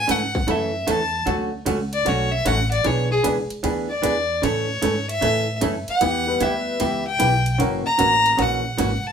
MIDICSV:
0, 0, Header, 1, 7, 480
1, 0, Start_track
1, 0, Key_signature, 3, "major"
1, 0, Tempo, 395257
1, 1544, Time_signature, 4, 2, 24, 8
1, 11078, End_track
2, 0, Start_track
2, 0, Title_t, "Fiddle"
2, 0, Program_c, 0, 110
2, 0, Note_on_c, 0, 80, 118
2, 126, Note_on_c, 0, 78, 89
2, 144, Note_off_c, 0, 80, 0
2, 615, Note_on_c, 0, 76, 76
2, 633, Note_off_c, 0, 78, 0
2, 1102, Note_on_c, 0, 81, 88
2, 1120, Note_off_c, 0, 76, 0
2, 1563, Note_off_c, 0, 81, 0
2, 2349, Note_on_c, 0, 74, 91
2, 2527, Note_on_c, 0, 73, 84
2, 2545, Note_off_c, 0, 74, 0
2, 2816, Note_on_c, 0, 76, 101
2, 2834, Note_off_c, 0, 73, 0
2, 2991, Note_on_c, 0, 78, 102
2, 3009, Note_off_c, 0, 76, 0
2, 3287, Note_off_c, 0, 78, 0
2, 3294, Note_on_c, 0, 74, 91
2, 3479, Note_on_c, 0, 73, 83
2, 3497, Note_off_c, 0, 74, 0
2, 3770, Note_off_c, 0, 73, 0
2, 3777, Note_on_c, 0, 68, 104
2, 3874, Note_off_c, 0, 68, 0
2, 4724, Note_on_c, 0, 74, 88
2, 5392, Note_on_c, 0, 73, 82
2, 5410, Note_off_c, 0, 74, 0
2, 6185, Note_off_c, 0, 73, 0
2, 6193, Note_on_c, 0, 76, 98
2, 6782, Note_off_c, 0, 76, 0
2, 7158, Note_on_c, 0, 78, 101
2, 7803, Note_on_c, 0, 76, 85
2, 7821, Note_off_c, 0, 78, 0
2, 8582, Note_off_c, 0, 76, 0
2, 8590, Note_on_c, 0, 79, 103
2, 9181, Note_off_c, 0, 79, 0
2, 9545, Note_on_c, 0, 82, 118
2, 10220, Note_on_c, 0, 78, 79
2, 10238, Note_off_c, 0, 82, 0
2, 11008, Note_on_c, 0, 81, 97
2, 11026, Note_off_c, 0, 78, 0
2, 11078, Note_off_c, 0, 81, 0
2, 11078, End_track
3, 0, Start_track
3, 0, Title_t, "Upright piano"
3, 0, Program_c, 1, 0
3, 7614, Note_on_c, 1, 55, 68
3, 7618, Note_on_c, 1, 59, 66
3, 7622, Note_on_c, 1, 67, 67
3, 7625, Note_on_c, 1, 64, 65
3, 7627, Note_on_c, 1, 71, 80
3, 8225, Note_off_c, 1, 55, 0
3, 8227, Note_off_c, 1, 59, 0
3, 8229, Note_off_c, 1, 67, 0
3, 8231, Note_off_c, 1, 64, 0
3, 8232, Note_off_c, 1, 71, 0
3, 9212, Note_on_c, 1, 58, 69
3, 9218, Note_on_c, 1, 61, 63
3, 9223, Note_on_c, 1, 64, 66
3, 9227, Note_on_c, 1, 66, 61
3, 9228, Note_on_c, 1, 70, 78
3, 9504, Note_off_c, 1, 58, 0
3, 9507, Note_off_c, 1, 61, 0
3, 9509, Note_off_c, 1, 64, 0
3, 9512, Note_off_c, 1, 66, 0
3, 9512, Note_off_c, 1, 70, 0
3, 9698, Note_on_c, 1, 58, 62
3, 9702, Note_on_c, 1, 61, 57
3, 9705, Note_on_c, 1, 64, 62
3, 9712, Note_on_c, 1, 66, 59
3, 9715, Note_on_c, 1, 70, 73
3, 10436, Note_off_c, 1, 58, 0
3, 10439, Note_off_c, 1, 61, 0
3, 10440, Note_off_c, 1, 64, 0
3, 10443, Note_off_c, 1, 66, 0
3, 10445, Note_off_c, 1, 70, 0
3, 11078, End_track
4, 0, Start_track
4, 0, Title_t, "Hollow-body jazz guitar"
4, 0, Program_c, 2, 26
4, 88, Note_on_c, 2, 49, 79
4, 97, Note_on_c, 2, 52, 81
4, 97, Note_on_c, 2, 57, 86
4, 101, Note_on_c, 2, 61, 81
4, 103, Note_on_c, 2, 69, 79
4, 242, Note_off_c, 2, 49, 0
4, 246, Note_off_c, 2, 52, 0
4, 246, Note_off_c, 2, 57, 0
4, 248, Note_off_c, 2, 61, 0
4, 249, Note_off_c, 2, 69, 0
4, 573, Note_on_c, 2, 49, 58
4, 577, Note_on_c, 2, 52, 63
4, 585, Note_on_c, 2, 57, 65
4, 588, Note_on_c, 2, 61, 59
4, 588, Note_on_c, 2, 69, 66
4, 853, Note_off_c, 2, 49, 0
4, 856, Note_off_c, 2, 52, 0
4, 859, Note_off_c, 2, 57, 0
4, 861, Note_off_c, 2, 61, 0
4, 861, Note_off_c, 2, 69, 0
4, 1055, Note_on_c, 2, 49, 81
4, 1056, Note_on_c, 2, 52, 86
4, 1060, Note_on_c, 2, 57, 82
4, 1066, Note_on_c, 2, 61, 77
4, 1068, Note_on_c, 2, 69, 80
4, 1205, Note_off_c, 2, 49, 0
4, 1205, Note_off_c, 2, 52, 0
4, 1207, Note_off_c, 2, 57, 0
4, 1211, Note_off_c, 2, 61, 0
4, 1211, Note_off_c, 2, 69, 0
4, 1528, Note_on_c, 2, 50, 55
4, 1533, Note_on_c, 2, 54, 62
4, 1537, Note_on_c, 2, 57, 60
4, 1541, Note_on_c, 2, 61, 68
4, 1543, Note_on_c, 2, 66, 70
4, 1811, Note_off_c, 2, 50, 0
4, 1813, Note_off_c, 2, 54, 0
4, 1815, Note_off_c, 2, 57, 0
4, 1817, Note_off_c, 2, 61, 0
4, 1818, Note_off_c, 2, 66, 0
4, 2010, Note_on_c, 2, 50, 73
4, 2016, Note_on_c, 2, 54, 73
4, 2020, Note_on_c, 2, 57, 79
4, 2027, Note_on_c, 2, 61, 80
4, 2030, Note_on_c, 2, 66, 77
4, 2162, Note_off_c, 2, 50, 0
4, 2165, Note_off_c, 2, 54, 0
4, 2167, Note_off_c, 2, 57, 0
4, 2170, Note_off_c, 2, 61, 0
4, 2172, Note_off_c, 2, 66, 0
4, 2491, Note_on_c, 2, 50, 61
4, 2495, Note_on_c, 2, 54, 63
4, 2502, Note_on_c, 2, 57, 59
4, 2505, Note_on_c, 2, 61, 61
4, 2510, Note_on_c, 2, 66, 67
4, 2771, Note_off_c, 2, 50, 0
4, 2773, Note_off_c, 2, 54, 0
4, 2777, Note_off_c, 2, 57, 0
4, 2778, Note_off_c, 2, 61, 0
4, 2781, Note_off_c, 2, 66, 0
4, 2978, Note_on_c, 2, 50, 78
4, 2985, Note_on_c, 2, 54, 82
4, 2991, Note_on_c, 2, 57, 77
4, 2996, Note_on_c, 2, 61, 81
4, 3000, Note_on_c, 2, 66, 93
4, 3126, Note_off_c, 2, 50, 0
4, 3129, Note_off_c, 2, 54, 0
4, 3132, Note_off_c, 2, 57, 0
4, 3134, Note_off_c, 2, 61, 0
4, 3136, Note_off_c, 2, 66, 0
4, 3452, Note_on_c, 2, 52, 63
4, 3463, Note_on_c, 2, 59, 59
4, 3466, Note_on_c, 2, 62, 59
4, 3471, Note_on_c, 2, 68, 66
4, 3731, Note_off_c, 2, 52, 0
4, 3737, Note_off_c, 2, 59, 0
4, 3738, Note_off_c, 2, 62, 0
4, 3741, Note_off_c, 2, 68, 0
4, 3928, Note_on_c, 2, 52, 73
4, 3935, Note_on_c, 2, 59, 79
4, 3940, Note_on_c, 2, 62, 81
4, 3946, Note_on_c, 2, 68, 99
4, 4080, Note_off_c, 2, 52, 0
4, 4084, Note_off_c, 2, 59, 0
4, 4086, Note_off_c, 2, 62, 0
4, 4089, Note_off_c, 2, 68, 0
4, 4409, Note_on_c, 2, 52, 62
4, 4420, Note_on_c, 2, 59, 62
4, 4425, Note_on_c, 2, 62, 64
4, 4429, Note_on_c, 2, 68, 62
4, 4689, Note_off_c, 2, 52, 0
4, 4695, Note_off_c, 2, 59, 0
4, 4697, Note_off_c, 2, 62, 0
4, 4699, Note_off_c, 2, 68, 0
4, 4883, Note_on_c, 2, 52, 80
4, 4891, Note_on_c, 2, 59, 79
4, 4899, Note_on_c, 2, 62, 84
4, 4903, Note_on_c, 2, 68, 83
4, 5037, Note_off_c, 2, 52, 0
4, 5041, Note_off_c, 2, 59, 0
4, 5045, Note_off_c, 2, 62, 0
4, 5047, Note_off_c, 2, 68, 0
4, 5368, Note_on_c, 2, 49, 65
4, 5376, Note_on_c, 2, 52, 55
4, 5383, Note_on_c, 2, 57, 64
4, 5385, Note_on_c, 2, 61, 60
4, 5392, Note_on_c, 2, 69, 60
4, 5649, Note_off_c, 2, 49, 0
4, 5653, Note_off_c, 2, 52, 0
4, 5656, Note_off_c, 2, 57, 0
4, 5657, Note_off_c, 2, 61, 0
4, 5660, Note_off_c, 2, 69, 0
4, 5850, Note_on_c, 2, 49, 71
4, 5851, Note_on_c, 2, 52, 73
4, 5855, Note_on_c, 2, 57, 82
4, 5863, Note_on_c, 2, 69, 80
4, 5867, Note_on_c, 2, 61, 87
4, 6000, Note_off_c, 2, 49, 0
4, 6001, Note_off_c, 2, 52, 0
4, 6003, Note_off_c, 2, 57, 0
4, 6007, Note_off_c, 2, 69, 0
4, 6009, Note_off_c, 2, 61, 0
4, 6329, Note_on_c, 2, 49, 64
4, 6336, Note_on_c, 2, 52, 64
4, 6342, Note_on_c, 2, 57, 60
4, 6345, Note_on_c, 2, 61, 64
4, 6350, Note_on_c, 2, 69, 62
4, 6609, Note_off_c, 2, 49, 0
4, 6613, Note_off_c, 2, 52, 0
4, 6615, Note_off_c, 2, 57, 0
4, 6617, Note_off_c, 2, 61, 0
4, 6619, Note_off_c, 2, 69, 0
4, 6812, Note_on_c, 2, 49, 75
4, 6818, Note_on_c, 2, 52, 71
4, 6819, Note_on_c, 2, 57, 79
4, 6826, Note_on_c, 2, 61, 77
4, 6829, Note_on_c, 2, 69, 83
4, 6961, Note_off_c, 2, 49, 0
4, 6964, Note_off_c, 2, 52, 0
4, 6965, Note_off_c, 2, 57, 0
4, 6968, Note_off_c, 2, 61, 0
4, 6969, Note_off_c, 2, 69, 0
4, 7301, Note_on_c, 2, 52, 57
4, 7307, Note_on_c, 2, 59, 64
4, 7311, Note_on_c, 2, 67, 64
4, 7312, Note_on_c, 2, 64, 60
4, 7575, Note_off_c, 2, 52, 0
4, 7578, Note_off_c, 2, 59, 0
4, 7580, Note_off_c, 2, 64, 0
4, 7580, Note_off_c, 2, 67, 0
4, 7776, Note_on_c, 2, 52, 80
4, 7784, Note_on_c, 2, 59, 74
4, 7789, Note_on_c, 2, 64, 85
4, 7794, Note_on_c, 2, 67, 83
4, 7923, Note_off_c, 2, 52, 0
4, 7927, Note_off_c, 2, 59, 0
4, 7930, Note_off_c, 2, 64, 0
4, 7932, Note_off_c, 2, 67, 0
4, 8260, Note_on_c, 2, 52, 57
4, 8266, Note_on_c, 2, 59, 64
4, 8269, Note_on_c, 2, 64, 62
4, 8272, Note_on_c, 2, 67, 68
4, 8535, Note_off_c, 2, 52, 0
4, 8538, Note_off_c, 2, 59, 0
4, 8540, Note_off_c, 2, 64, 0
4, 8541, Note_off_c, 2, 67, 0
4, 8732, Note_on_c, 2, 52, 78
4, 8740, Note_on_c, 2, 59, 75
4, 8749, Note_on_c, 2, 67, 76
4, 8751, Note_on_c, 2, 64, 77
4, 8882, Note_off_c, 2, 52, 0
4, 8886, Note_off_c, 2, 59, 0
4, 8890, Note_off_c, 2, 67, 0
4, 8891, Note_off_c, 2, 64, 0
4, 9210, Note_on_c, 2, 49, 63
4, 9212, Note_on_c, 2, 52, 60
4, 9221, Note_on_c, 2, 58, 60
4, 9222, Note_on_c, 2, 61, 63
4, 9225, Note_on_c, 2, 66, 64
4, 9491, Note_off_c, 2, 49, 0
4, 9492, Note_off_c, 2, 52, 0
4, 9496, Note_off_c, 2, 58, 0
4, 9497, Note_off_c, 2, 61, 0
4, 9498, Note_off_c, 2, 66, 0
4, 9691, Note_on_c, 2, 49, 80
4, 9692, Note_on_c, 2, 52, 74
4, 9699, Note_on_c, 2, 58, 70
4, 9703, Note_on_c, 2, 61, 80
4, 9706, Note_on_c, 2, 66, 83
4, 9842, Note_off_c, 2, 49, 0
4, 9842, Note_off_c, 2, 52, 0
4, 9846, Note_off_c, 2, 58, 0
4, 9848, Note_off_c, 2, 61, 0
4, 9849, Note_off_c, 2, 66, 0
4, 10169, Note_on_c, 2, 49, 65
4, 10175, Note_on_c, 2, 52, 61
4, 10182, Note_on_c, 2, 58, 58
4, 10183, Note_on_c, 2, 61, 65
4, 10185, Note_on_c, 2, 66, 70
4, 10451, Note_off_c, 2, 49, 0
4, 10454, Note_off_c, 2, 52, 0
4, 10458, Note_off_c, 2, 58, 0
4, 10458, Note_off_c, 2, 61, 0
4, 10459, Note_off_c, 2, 66, 0
4, 10657, Note_on_c, 2, 49, 76
4, 10664, Note_on_c, 2, 52, 81
4, 10666, Note_on_c, 2, 58, 81
4, 10670, Note_on_c, 2, 61, 88
4, 10672, Note_on_c, 2, 66, 85
4, 10806, Note_off_c, 2, 49, 0
4, 10810, Note_off_c, 2, 52, 0
4, 10810, Note_off_c, 2, 58, 0
4, 10813, Note_off_c, 2, 61, 0
4, 10814, Note_off_c, 2, 66, 0
4, 11078, End_track
5, 0, Start_track
5, 0, Title_t, "Upright bass"
5, 0, Program_c, 3, 32
5, 109, Note_on_c, 3, 44, 80
5, 572, Note_off_c, 3, 44, 0
5, 586, Note_on_c, 3, 42, 87
5, 1050, Note_off_c, 3, 42, 0
5, 1064, Note_on_c, 3, 40, 97
5, 1529, Note_off_c, 3, 40, 0
5, 1541, Note_on_c, 3, 38, 89
5, 2008, Note_off_c, 3, 38, 0
5, 2019, Note_on_c, 3, 37, 92
5, 2486, Note_off_c, 3, 37, 0
5, 2506, Note_on_c, 3, 35, 89
5, 2969, Note_off_c, 3, 35, 0
5, 2983, Note_on_c, 3, 33, 106
5, 3448, Note_off_c, 3, 33, 0
5, 3458, Note_on_c, 3, 35, 81
5, 3925, Note_off_c, 3, 35, 0
5, 3940, Note_on_c, 3, 37, 84
5, 4237, Note_off_c, 3, 37, 0
5, 4416, Note_on_c, 3, 38, 89
5, 4884, Note_off_c, 3, 38, 0
5, 4901, Note_on_c, 3, 40, 102
5, 5366, Note_off_c, 3, 40, 0
5, 5381, Note_on_c, 3, 45, 84
5, 5846, Note_off_c, 3, 45, 0
5, 5861, Note_on_c, 3, 44, 93
5, 6325, Note_off_c, 3, 44, 0
5, 6340, Note_on_c, 3, 45, 94
5, 6805, Note_off_c, 3, 45, 0
5, 6822, Note_on_c, 3, 42, 93
5, 7118, Note_off_c, 3, 42, 0
5, 7299, Note_on_c, 3, 40, 92
5, 7765, Note_off_c, 3, 40, 0
5, 7782, Note_on_c, 3, 38, 80
5, 8247, Note_off_c, 3, 38, 0
5, 8261, Note_on_c, 3, 37, 88
5, 8726, Note_off_c, 3, 37, 0
5, 8741, Note_on_c, 3, 35, 109
5, 9207, Note_off_c, 3, 35, 0
5, 9221, Note_on_c, 3, 30, 95
5, 9518, Note_off_c, 3, 30, 0
5, 9706, Note_on_c, 3, 33, 88
5, 10170, Note_off_c, 3, 33, 0
5, 10184, Note_on_c, 3, 34, 93
5, 10650, Note_off_c, 3, 34, 0
5, 10665, Note_on_c, 3, 32, 104
5, 10962, Note_off_c, 3, 32, 0
5, 11078, End_track
6, 0, Start_track
6, 0, Title_t, "Muted upright bass strokes"
6, 4250, Note_on_c, 9, 29, 43
6, 4371, Note_off_c, 9, 29, 0
6, 7142, Note_on_c, 9, 29, 41
6, 7264, Note_off_c, 9, 29, 0
6, 9548, Note_on_c, 9, 29, 42
6, 9670, Note_off_c, 9, 29, 0
6, 10974, Note_on_c, 9, 29, 41
6, 11078, Note_off_c, 9, 29, 0
6, 11078, End_track
7, 0, Start_track
7, 0, Title_t, "Drums"
7, 107, Note_on_c, 9, 36, 17
7, 109, Note_on_c, 9, 44, 62
7, 109, Note_on_c, 9, 51, 71
7, 229, Note_off_c, 9, 36, 0
7, 230, Note_off_c, 9, 44, 0
7, 230, Note_off_c, 9, 51, 0
7, 425, Note_on_c, 9, 36, 55
7, 547, Note_off_c, 9, 36, 0
7, 581, Note_on_c, 9, 51, 62
7, 587, Note_on_c, 9, 36, 21
7, 702, Note_off_c, 9, 51, 0
7, 708, Note_off_c, 9, 36, 0
7, 1064, Note_on_c, 9, 44, 62
7, 1064, Note_on_c, 9, 51, 73
7, 1066, Note_on_c, 9, 36, 21
7, 1185, Note_off_c, 9, 44, 0
7, 1185, Note_off_c, 9, 51, 0
7, 1187, Note_off_c, 9, 36, 0
7, 1539, Note_on_c, 9, 51, 55
7, 1545, Note_on_c, 9, 36, 20
7, 1661, Note_off_c, 9, 51, 0
7, 1667, Note_off_c, 9, 36, 0
7, 2019, Note_on_c, 9, 44, 59
7, 2019, Note_on_c, 9, 51, 69
7, 2022, Note_on_c, 9, 36, 26
7, 2141, Note_off_c, 9, 44, 0
7, 2141, Note_off_c, 9, 51, 0
7, 2144, Note_off_c, 9, 36, 0
7, 2341, Note_on_c, 9, 51, 53
7, 2462, Note_off_c, 9, 51, 0
7, 2501, Note_on_c, 9, 51, 63
7, 2502, Note_on_c, 9, 36, 20
7, 2622, Note_off_c, 9, 51, 0
7, 2624, Note_off_c, 9, 36, 0
7, 2981, Note_on_c, 9, 36, 21
7, 2983, Note_on_c, 9, 44, 51
7, 2983, Note_on_c, 9, 51, 75
7, 3102, Note_off_c, 9, 36, 0
7, 3105, Note_off_c, 9, 44, 0
7, 3105, Note_off_c, 9, 51, 0
7, 3303, Note_on_c, 9, 51, 49
7, 3424, Note_off_c, 9, 51, 0
7, 3454, Note_on_c, 9, 51, 60
7, 3457, Note_on_c, 9, 36, 24
7, 3576, Note_off_c, 9, 51, 0
7, 3579, Note_off_c, 9, 36, 0
7, 3938, Note_on_c, 9, 36, 20
7, 3938, Note_on_c, 9, 44, 66
7, 3938, Note_on_c, 9, 51, 68
7, 4059, Note_off_c, 9, 44, 0
7, 4059, Note_off_c, 9, 51, 0
7, 4060, Note_off_c, 9, 36, 0
7, 4256, Note_on_c, 9, 51, 48
7, 4377, Note_off_c, 9, 51, 0
7, 4417, Note_on_c, 9, 51, 64
7, 4418, Note_on_c, 9, 36, 20
7, 4538, Note_off_c, 9, 51, 0
7, 4540, Note_off_c, 9, 36, 0
7, 4900, Note_on_c, 9, 36, 22
7, 4900, Note_on_c, 9, 44, 64
7, 4900, Note_on_c, 9, 51, 79
7, 5021, Note_off_c, 9, 44, 0
7, 5021, Note_off_c, 9, 51, 0
7, 5022, Note_off_c, 9, 36, 0
7, 5382, Note_on_c, 9, 36, 24
7, 5385, Note_on_c, 9, 51, 64
7, 5503, Note_off_c, 9, 36, 0
7, 5506, Note_off_c, 9, 51, 0
7, 5859, Note_on_c, 9, 44, 54
7, 5859, Note_on_c, 9, 51, 74
7, 5862, Note_on_c, 9, 36, 26
7, 5980, Note_off_c, 9, 44, 0
7, 5980, Note_off_c, 9, 51, 0
7, 5984, Note_off_c, 9, 36, 0
7, 6186, Note_on_c, 9, 51, 51
7, 6307, Note_off_c, 9, 51, 0
7, 6343, Note_on_c, 9, 36, 23
7, 6344, Note_on_c, 9, 51, 67
7, 6464, Note_off_c, 9, 36, 0
7, 6465, Note_off_c, 9, 51, 0
7, 6817, Note_on_c, 9, 44, 62
7, 6817, Note_on_c, 9, 51, 69
7, 6822, Note_on_c, 9, 36, 25
7, 6939, Note_off_c, 9, 44, 0
7, 6939, Note_off_c, 9, 51, 0
7, 6944, Note_off_c, 9, 36, 0
7, 7140, Note_on_c, 9, 51, 50
7, 7261, Note_off_c, 9, 51, 0
7, 7297, Note_on_c, 9, 51, 67
7, 7301, Note_on_c, 9, 36, 23
7, 7418, Note_off_c, 9, 51, 0
7, 7422, Note_off_c, 9, 36, 0
7, 7778, Note_on_c, 9, 44, 51
7, 7778, Note_on_c, 9, 51, 70
7, 7781, Note_on_c, 9, 36, 21
7, 7900, Note_off_c, 9, 44, 0
7, 7900, Note_off_c, 9, 51, 0
7, 7902, Note_off_c, 9, 36, 0
7, 8256, Note_on_c, 9, 51, 68
7, 8259, Note_on_c, 9, 36, 24
7, 8377, Note_off_c, 9, 51, 0
7, 8381, Note_off_c, 9, 36, 0
7, 8740, Note_on_c, 9, 44, 65
7, 8740, Note_on_c, 9, 51, 78
7, 8741, Note_on_c, 9, 36, 20
7, 8861, Note_off_c, 9, 44, 0
7, 8861, Note_off_c, 9, 51, 0
7, 8862, Note_off_c, 9, 36, 0
7, 9060, Note_on_c, 9, 51, 54
7, 9182, Note_off_c, 9, 51, 0
7, 9224, Note_on_c, 9, 36, 17
7, 9227, Note_on_c, 9, 51, 71
7, 9345, Note_off_c, 9, 36, 0
7, 9349, Note_off_c, 9, 51, 0
7, 9700, Note_on_c, 9, 44, 62
7, 9700, Note_on_c, 9, 51, 67
7, 9703, Note_on_c, 9, 36, 27
7, 9821, Note_off_c, 9, 44, 0
7, 9821, Note_off_c, 9, 51, 0
7, 9824, Note_off_c, 9, 36, 0
7, 10028, Note_on_c, 9, 51, 50
7, 10150, Note_off_c, 9, 51, 0
7, 10184, Note_on_c, 9, 36, 24
7, 10184, Note_on_c, 9, 51, 61
7, 10305, Note_off_c, 9, 51, 0
7, 10306, Note_off_c, 9, 36, 0
7, 10666, Note_on_c, 9, 36, 26
7, 10668, Note_on_c, 9, 44, 68
7, 10668, Note_on_c, 9, 51, 81
7, 10787, Note_off_c, 9, 36, 0
7, 10790, Note_off_c, 9, 44, 0
7, 10790, Note_off_c, 9, 51, 0
7, 11078, End_track
0, 0, End_of_file